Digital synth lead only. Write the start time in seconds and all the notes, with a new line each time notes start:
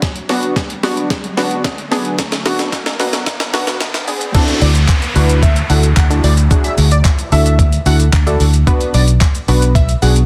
4.62 D5
5.43 E5
5.70 F#5
5.97 F#5
6.24 D5
6.65 E5
6.92 D5
7.32 E5
7.87 F#5
8.94 D5
9.75 E5
10.02 F#5